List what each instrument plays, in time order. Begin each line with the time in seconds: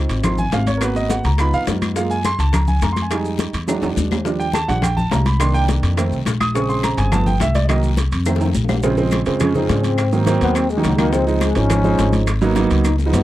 Already playing: grand piano C4 D#4 F4
0.09 upright bass G#1, high bongo, high conga, high timbale, short guiro, maracas
0.24 grand piano C4 D#4 F4 C6, high bongo, high conga, low conga, high timbale, long guiro, claves, maracas
0.38 grand piano G#5, high conga, low conga, maracas
0.52 upright bass G#1, grand piano F5, high bongo, low bongo, high conga, high timbale, low timbale, short guiro, maracas
0.67 grand piano C#5, high bongo, high conga, high timbale, short guiro, maracas
0.77 grand piano A#3 A#4, high bongo, high conga, high timbale
0.82 grand piano B3 F#4 B4, long guiro, claves, maracas
0.95 grand piano D#5, high bongo, high conga, maracas
1.09 grand piano F#5, high bongo, high conga, high timbale, short guiro, maracas
1.24 upright bass C#2, grand piano A#5, high bongo, high conga, high timbale, short guiro, maracas
1.38 grand piano B3 D#4 F4 B5, high bongo, high conga, high timbale, long guiro, claves, maracas
1.53 upright bass F2, grand piano F5, high bongo, high conga, maracas
1.67 upright bass F#2, high bongo, low bongo, high conga, high timbale, low timbale, short guiro, maracas
1.82 high conga, high timbale, short guiro, claves, maracas
1.96 grand piano G#3 A#3 F4 F5, high bongo, high conga, long guiro, maracas
2.10 grand piano G#5, high bongo, high conga, maracas
2.24 grand piano C6, high bongo, high conga, high timbale, short guiro, claves, maracas
2.39 upright bass C#2, grand piano A5, high bongo, high conga, high timbale, short guiro, maracas
2.53 grand piano A#5, high bongo, high conga, low conga, high timbale, long guiro, claves, maracas
2.67 grand piano G#5, high conga, low conga, maracas
2.82 upright bass F2, grand piano A#5, high bongo, low bongo, high conga, high timbale, short guiro, maracas
2.93 grand piano C6, high bongo, high conga, maracas
2.97 high timbale, short guiro
3.02 grand piano G#5
3.11 grand piano G3 G#3 D#4, high bongo, high conga, high timbale, long guiro, claves, maracas
3.25 high bongo, high conga, maracas
3.39 high bongo, high conga, high timbale, short guiro, maracas
3.53 upright bass E2, high bongo, high conga, high timbale, short guiro, maracas
3.67 grand piano F#3 G#3 D4, high bongo, high conga, high timbale, long guiro, claves, maracas
3.82 upright bass E2, high bongo, high conga, high timbale, maracas
3.97 upright bass D#2, low bongo, high conga, short guiro, maracas
4.11 low bongo, high conga, low timbale, short guiro, claves, maracas
4.25 grand piano F3 G3 D4, high bongo, high conga, long guiro, maracas
4.40 grand piano G5, high bongo, high conga, maracas
4.54 grand piano A5, high bongo, high conga, high timbale, short guiro, claves, maracas
4.68 upright bass A#1, grand piano F3 G3 D4 F#5, high bongo, high conga, high timbale, short guiro, maracas
4.82 grand piano G5, high bongo, high conga, low conga, high timbale, long guiro, claves, maracas
4.97 grand piano A5, high conga, low conga, maracas
5.11 upright bass C2, grand piano A#5, high bongo, low bongo, high conga, high timbale, low timbale, short guiro, maracas
5.26 grand piano B5, high bongo, high conga, high timbale, short guiro, maracas
5.39 grand piano D#3 A#3 D4 C6, high bongo, high timbale, long guiro, claves, maracas
5.54 grand piano G5, high bongo, high conga, maracas
5.69 high bongo, high conga, high timbale, short guiro, maracas
5.83 upright bass F2, high bongo, high conga, high timbale, short guiro, maracas
5.97 grand piano D#3 A3 C4, high bongo, high conga, high timbale, long guiro, claves, maracas
6.11 upright bass C2, high bongo, high conga, maracas
6.25 upright bass A#1, high bongo, low bongo, high conga, high timbale, short guiro, maracas
6.40 grand piano D#6, high conga, high timbale, short guiro, claves, maracas
6.54 grand piano C#3 G#3 C4 C#6, high bongo, high conga, long guiro, maracas
6.69 grand piano C6, high bongo, high conga, maracas
6.83 grand piano A#5, high bongo, high conga, high timbale, short guiro, claves, maracas
6.97 upright bass G1, grand piano G#5, high bongo, high conga, high timbale, short guiro, maracas
7.12 grand piano F3 A3 B3 A5, high bongo, high conga, low conga, high timbale, long guiro, claves, maracas
7.27 grand piano G5, high conga, low conga, maracas
7.40 upright bass C2, grand piano E5, high bongo, low bongo, high conga, high timbale, short guiro, maracas
7.55 grand piano D5, high bongo, high conga, high timbale, short guiro, maracas
7.65 grand piano D#3 D5, high bongo, high timbale, claves
7.70 grand piano F#3 A#3 D#5, high conga, long guiro, maracas
7.83 high bongo, high conga, maracas
7.97 high bongo, high conga, high timbale, short guiro, maracas
8.12 upright bass F2, high bongo, high conga, high timbale, short guiro, maracas
8.26 grand piano D#3 A3 C4, high bongo, high conga, high timbale, long guiro, claves, maracas
8.36 high bongo
8.40 high conga, high timbale, maracas
8.45 low bongo
8.55 upright bass A#1, high conga, short guiro, maracas
8.64 low bongo
8.69 high conga, low timbale, short guiro, claves, maracas
8.74 low bongo
8.83 grand piano C#3 F3 G#3 C4, high bongo, long guiro, maracas
8.97 grand piano C#3 F3 G#3 C4, high bongo, high conga, maracas
9.11 high bongo, high conga, high timbale, short guiro, claves, maracas
9.26 upright bass F2, grand piano C#3 F3 G#3 C4, high conga, high timbale, short guiro, maracas
9.40 grand piano C#3 F3 G#3 C#4, high bongo, high conga, low conga, high timbale, long guiro, claves, maracas
9.55 grand piano C#3 F3 G#3 C4, trombone D#4, high conga, low conga, maracas
9.69 upright bass G#2, trombone D4, high bongo, low bongo, high conga, high timbale, short guiro, maracas
9.84 trombone C4, high conga, high timbale, short guiro, maracas
9.98 high bongo, high conga, high timbale, long guiro, claves, maracas
10.12 grand piano D#3 F#3 A#3 C4, high bongo, high conga, maracas
10.26 grand piano D#3 F#3 A#3 C4, high bongo, high conga, high timbale, short guiro, maracas
10.41 upright bass D#2, trombone B3, high bongo, high conga, high timbale, short guiro, maracas
10.55 trombone C4, high bongo, high conga, high timbale, long guiro, claves, maracas
10.70 trombone G#3, high bongo, high conga, maracas
10.77 grand piano D#3 F#3 A#3 D#4
10.84 upright bass C#2, trombone F#3, high bongo, low bongo, high conga, high timbale, short guiro, maracas
10.98 grand piano D#3 F#3 A#3 D#4, trombone A#3, high conga, high timbale, short guiro, claves, maracas
11.13 grand piano F3 G#3 C4 D#4, trombone C4, high bongo, long guiro, maracas
11.27 trombone D#3, grand piano F3 G#3 C4 D#4, high bongo, high conga, maracas
11.41 trombone G#3, high bongo, high conga, high timbale, short guiro, claves, maracas
11.55 upright bass G#1, grand piano F3 G#3 C4 D#4, trombone C#4, high conga, high timbale, short guiro, maracas
11.70 grand piano F3 G#3 C4 D#4, high bongo, high conga, low conga, high timbale, long guiro, claves, maracas
11.84 grand piano F3 G#3 D#4 C5, high conga, low conga, maracas
11.99 upright bass G#1, high bongo, low bongo, high conga, high timbale, short guiro, maracas
12.13 high conga, high timbale, short guiro, maracas
12.27 high bongo, high timbale, long guiro, claves, maracas
12.42 grand piano F#3 A#3 B3 D#4, high bongo, high conga, maracas
12.56 grand piano F#3 A#3 B3 D#4, high bongo, high conga, high timbale, short guiro, maracas
12.70 upright bass C#2, high conga, high timbale, short guiro, maracas
12.84 trombone D#4, low bongo, high conga, high timbale, long guiro, claves, maracas
12.99 trombone G#3, low bongo, high conga, maracas
13.06 grand piano F3 G#3 B3 D#4
13.13 upright bass F#2, trombone B3, low bongo, high conga, high timbale, low timbale, short guiro, maracas